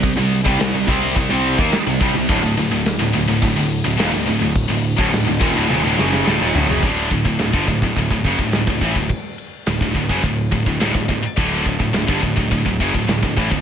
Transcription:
<<
  \new Staff \with { instrumentName = "Distorted electric guitar" } { \clef bass \time 4/4 \tempo 4 = 106 <c g>16 <c g>8 <c g>16 <c g>16 <c g>16 <c g c'>8 <c g>16 <c g c'>8 <ees bes>16 r16 <c g>16 <c g>16 <c g>16 | <d, a,>16 <d, a,>16 <d, a,>16 <d, a,>8 <d, a,>16 <d, a,>16 <d, a,>16 <d, a,>16 <d, a,>8 <d, a,>16 <ees, bes,>16 <d, a,>16 <d, a,>16 <d, a,>16~ | <d, a,>16 <d, a,>8 <d, a,>16 <d, a,>16 <d, a,>16 <ees, bes,>16 <d, a,>16 <ees, bes,>16 <d, a,>16 <fis, cis fis>8 <d, a,>16 <ees, bes,>16 <d, a,>16 <fis, cis>16 | <d, a, d>8 <d, a,>16 <d, a,>16 <d, a,>16 <g, d>16 <d, a,>16 <d, a,>16 <d, a,>16 <d, a,>16 <fis, cis>16 <d, a,>16 <d, a,>16 <d, a,>16 <a, e>16 <d, a,>16 |
r4 <d, a,>16 <d, a,>16 <d, a,>16 <fis, cis>16 <d, a,>8 <d, a,>16 <d, a,>16 <d, a,>16 <d, a,>16 <d, a,>16 r16 | <d, a, d>8 <d, a,>16 <d, a,>16 <d, a,>16 <g, d>16 <d, a,>16 <d, a,>16 <d, a,>16 <d, a,>16 <fis, cis>16 <d, a,>16 <d, a,>16 <d, a,>16 <a, e>16 <d, a,>16 | }
  \new Staff \with { instrumentName = "Distorted electric guitar" } { \clef bass \time 4/4 <c g>16 <c g>8 <c g>16 <c g>16 <c g>16 <c g c'>8 <c g>16 <c g c'>8 <ees bes>16 r16 <c g>16 <c g>16 <c g>16 | <d, a,>16 <d, a,>16 <d, a,>16 <d, a,>8 <d, a,>16 <d, a,>16 <d, a,>16 <d, a,>16 <d, a,>8 <d, a,>16 <ees, bes,>16 <d, a,>16 <d, a,>16 <d, a,>16~ | <d, a,>16 <d, a,>8 <d, a,>16 <d, a,>16 <d, a,>16 <ees, bes,>16 <d, a,>16 <ees, bes,>16 <d, a,>16 <fis, cis fis>8 <d, a,>16 <ees, bes,>16 <d, a,>16 <fis, cis>16 | <d, a, d>8 <d, a,>16 <d, a,>16 <d, a,>16 <g, d>16 <d, a,>16 <d, a,>16 <d, a,>16 <d, a,>16 <fis, cis>16 <d, a,>16 <d, a,>16 <d, a,>16 <a, e>16 <d, a,>16 |
r4 <d, a,>16 <d, a,>16 <d, a,>16 <fis, cis>16 <d, a,>8 <d, a,>16 <d, a,>16 <d, a,>16 <d, a,>16 <d, a,>16 r16 | <d, a, d>8 <d, a,>16 <d, a,>16 <d, a,>16 <g, d>16 <d, a,>16 <d, a,>16 <d, a,>16 <d, a,>16 <fis, cis>16 <d, a,>16 <d, a,>16 <d, a,>16 <a, e>16 <d, a,>16 | }
  \new Staff \with { instrumentName = "Overdriven electric guitar" } { \clef bass \time 4/4 <c g>16 <c g>8 <c g>16 <c g>16 <c g>16 <c g c'>8 <c g>16 <c g c'>8 <ees bes>16 r16 <c g>16 <c g>16 <c g>16 | <d, a,>16 <d, a,>16 <d, a,>16 <d, a,>8 <d, a,>16 <d, a,>16 <d, a,>16 <d, a,>16 <d, a,>8 <d, a,>16 <ees, bes,>16 <d, a,>16 <d, a,>16 <d, a,>16~ | <d, a,>16 <d, a,>8 <d, a,>16 <d, a,>16 <d, a,>16 <ees, bes,>16 <d, a,>16 <ees, bes,>16 <d, a,>16 <fis, cis fis>8 <d, a,>16 <ees, bes,>16 <d, a,>16 <fis, cis>16 | r1 |
r1 | r1 | }
  \new Staff \with { instrumentName = "Picked electric bass" } { \clef bass \time 4/4 c,16 c,8 c,16 c,16 c,16 c,8 c,16 c,8 ees,16 r16 c,16 c,16 c,16 | d,,16 d,,16 d,,16 d,,8 d,,16 d,,16 d,,16 d,,16 d,,8 d,,16 ees,,16 d,,16 d,,16 d,,16~ | d,,16 d,,8 d,,16 d,,16 d,,16 ees,,16 d,,16 ees,,16 d,,16 fis,,8 d,,16 ees,,16 d,,16 fis,,16 | d,,8 d,,16 d,,16 d,,16 g,,16 d,,16 d,,16 d,,16 d,,16 fis,,16 d,,16 d,,16 d,,16 a,,16 d,,16 |
r4 d,,16 d,,16 d,,16 fis,,16 d,,8 d,,16 d,,16 d,,16 d,,16 d,,16 r16 | d,,8 d,,16 d,,16 d,,16 g,,16 d,,16 d,,16 d,,16 d,,16 fis,,16 d,,16 d,,16 d,,16 a,,16 d,,16 | }
  \new DrumStaff \with { instrumentName = "Drums" } \drummode { \time 4/4 <cymc bd>8 <cymc sn>16 bd16 <cymc sn>8 <cymc bd>8 <cymc bd>8 cymc16 bd16 <cymc sn>8 <cymc bd>8 | <cymc bd>8 cymc8 <cymc sn>8 cymc8 <cymc bd>8 cymc8 <cymc sn>8 cymc8 | <cymc bd>8 cymc16 bd16 <cymc sn>8 <cymc bd>8 tommh8 sn16 sn16 sn8 tomfh16 tomfh16 | <bd cymr>8 <bd cymr>16 bd16 <cymr sn>16 bd16 <bd cymr>16 bd16 <bd cymr>16 bd16 <bd cymr>16 bd16 <cymr sn>16 bd16 <bd cymr>16 bd16 |
<bd cymr>8 cymr8 <cymr sn>16 bd16 <bd cymr>16 bd16 <bd cymr>8 <bd cymr>16 bd16 <cymr sn>16 bd16 <bd cymr>8 | <bd cymr>8 <bd cymr>16 bd16 <cymr sn>16 bd16 <bd cymr>16 bd16 <bd cymr>16 bd16 <bd cymr>16 bd16 <cymr sn>16 bd16 <bd cymr>16 bd16 | }
>>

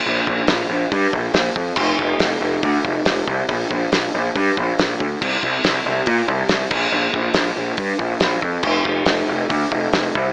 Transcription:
<<
  \new Staff \with { instrumentName = "Picked electric bass" } { \clef bass \time 4/4 \key bes \lydian \tempo 4 = 140 bes,,8 bes,,8 bes,,8 bes,,8 g,8 bes,,8 bes,,8 f,8 | f,,8 f,,8 f,,8 f,,8 d,8 f,,8 f,,8 c,8 | bes,,8 bes,,8 bes,,8 bes,,8 g,8 bes,,8 bes,,8 d,8 | c,8 c,8 c,8 c,8 bes,8 c,8 c,8 bes,,8 |
bes,,8 bes,,8 bes,,8 bes,,8 g,8 bes,,8 bes,,8 f,8 | f,,8 f,,8 f,,8 f,,8 d,8 f,,8 f,,8 c,8 | }
  \new DrumStaff \with { instrumentName = "Drums" } \drummode { \time 4/4 r8 bd8 <hho sn>4 <hho bd>8 bd8 <hho sn>8 bd8 | <cymc bd>8 bd8 <hho sn>4 <hho bd>8 bd8 <hho sn>8 bd8 | <hho bd>8 bd8 <hho sn>4 <hho bd>8 bd8 <hho sn>8 bd8 | <cymc bd>8 bd8 <hho sn>4 <hho bd>8 bd8 <hho sn>8 <cymc bd>8 |
r8 bd8 <hho sn>4 <hho bd>8 bd8 <hho sn>8 bd8 | <cymc bd>8 bd8 <hho sn>4 <hho bd>8 bd8 <hho sn>8 bd8 | }
>>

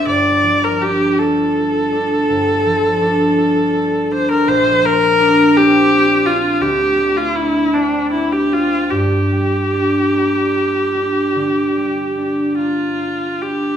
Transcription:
<<
  \new Staff \with { instrumentName = "Viola" } { \time 12/8 \key g \minor \tempo 4. = 53 d''8. bes'16 g'8 a'1 c''16 bes'16 | c''8 bes'4 g'4 f'8 g'8. f'16 e'8 d'8 e'16 g'16 f'8 | g'1~ g'8 f'4 g'8 | }
  \new Staff \with { instrumentName = "Harp" } { \time 12/8 \key g \minor <g,, d' a'>8 f8 d'8 f'8 a'8 d'8 g,,8 f8 d'8 f'8 a'8 d'8 | bes,,8 bes8 d'8 c'8 f'8 d'8 d,8 a8 d'8 c'8 d'8 c'8 | g,8 g8 d'8 bes8 f'8 d'8 d8 g8 d'8 bes8 f'8 d'8 | }
>>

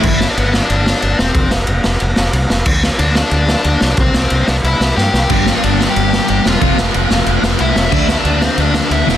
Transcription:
<<
  \new Staff \with { instrumentName = "Lead electric guitar" } { \time 4/4 \key g \mixolydian \tempo 4 = 183 <e' e''>8. <d' d''>16 <b b'>8. <d' d''>4~ <d' d''>16 <d' d''>8 <c' c''>8~ | <c' c''>8 r2. r8 | r4 <d' d''>8 <d' d''>2~ <d' d''>8 | <c' c''>4. <d' d''>8 <e' e''>4 <g' g''>8. <g' g''>16~ |
<g' g''>8. <f' f''>16 <d' d''>8. <g' g''>4~ <g' g''>16 <g' g''>8 <f' f''>8~ | <f' f''>8 r2 r8 <e' e''>8. <e' e''>16~ | <e' e''>8. <d' d''>8. <c' c''>8 <d' d''>4 <e' e''>4 | }
  \new Staff \with { instrumentName = "Distorted electric guitar" } { \time 4/4 \key g \mixolydian r1 | r1 | r1 | r1 |
<g b d' g'>1 | <f a c' f'>1 | <d a d' fis'>2.~ <d a d' fis'>8 <e gis b e'>8 | }
  \new Staff \with { instrumentName = "Distorted electric guitar" } { \clef bass \time 4/4 \key g \mixolydian r1 | r1 | r1 | r1 |
<g, d g>8 r2. r8 | <f, c f>8 r2. r8 | <d a d'>8 r2. <e, b, e>8 | }
  \new Staff \with { instrumentName = "Overdriven electric guitar" } { \clef bass \time 4/4 \key g \mixolydian r1 | r1 | r1 | r1 |
<g, d g>8 r2. r8 | <f, c f>8 r2. r8 | <d a d'>8 r2. <e, b, e>8 | }
  \new Staff \with { instrumentName = "Fretless electric bass" } { \clef bass \time 4/4 \key g \mixolydian g,,4 g,,4 g,,4 g,,8 e,,8 | f,,8 f,,8 f,,8 f,,8 f,,8 f,,8 c,8 f,,8 | d,4 d,4 d,4 d,8 c,8 | c,8 c,8 c,8 c,8 c,8 c,8 g,8 c,8 |
g,,4 g,,4 g,,4 g,,8 e,,8 | f,,8 f,,8 f,,8 f,,8 f,,8 f,,8 c,8 f,,8 | d,4 d,4 d,4 d,8 e,,8 | }
  \new DrumStaff \with { instrumentName = "Drums" } \drummode { \time 4/4 <cymc bd>8 sn8 cymr8 sn8 cymr8 sn8 cymr8 sn8 | <bd cymr>8 sn8 cymr8 sn8 cymr8 sn8 cymr8 sn8 | <cymc bd>8 sn8 cymr8 sn8 cymr8 sn8 cymr8 sn8 | <bd cymr>8 sn8 cymr8 sn8 cymr8 sn8 sn8 sn8 |
<cymc bd cymr>8 sn8 cymr8 sn8 cymr8 sn8 cymr8 sn8 | <bd cymr>8 sn8 cymr8 sn8 cymr8 sn8 cymr8 sn8 | <cymc bd>8 sn8 cymr8 sn8 cymr8 sn8 cymr8 sn8 | }
>>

